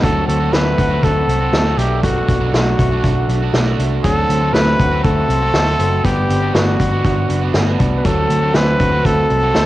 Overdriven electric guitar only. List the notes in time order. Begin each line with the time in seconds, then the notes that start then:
0.02 D3 A3 C4 F#4
0.40 D3 A3 C4 F#4
0.90 A3 C4 F#4
1.40 A3 C4 F#4
1.66 A3 C4 F#4
1.78 B2 F#3 A3 D4 F#4
2.40 B2 F#3 A3 D4 F#4
2.91 A3 D4 F#4
3.42 A3 D4 F#4
3.66 A3 D4 F#4
4.04 D3 A3 C4 F#4
4.41 D3 A3 C4 F#4
4.91 A3 C4 F#4
5.42 A3 C4 F#4
5.67 A3 C4 F#4
6.04 G3 B3 D4
6.42 G3 B3 D4 F#4
6.91 B3 D4 F#4
7.41 B3 D4 F#4
7.67 B3 D4 F#4
8.05 D3 A3 C4 F#4
8.42 D3 A3 C4 F#4
8.92 A3 C4 F#4
9.43 A3 C4 F#4